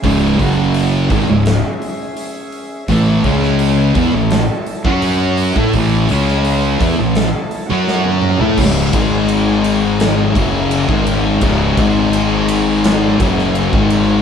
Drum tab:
CC |----------------|----------------|----------------|x---------------|
RD |----------------|----------------|----------------|--x-x-x-x-x-x-x-|
HH |o-o-o-o-o-o-o-o-|o-o-o-o-o-o-o-o-|o-o-o-o-o-o-----|----------------|
SD |--------o-------|---o----o-------|---o----o---o---|--------o-------|
T1 |----------------|----------------|-------------o--|----------------|
T2 |----------------|----------------|--------------o-|----------------|
FT |----------------|----------------|---------------o|----------------|
BD |o-o---o---------|o-o---o----o---o|o-----o---------|o-o-------o--o--|

CC |----------------|
RD |x-x-x-x-x-x-x-x-|
HH |----------------|
SD |--------o--o----|
T1 |----------------|
T2 |----------------|
FT |----------------|
BD |o-o-------o--o--|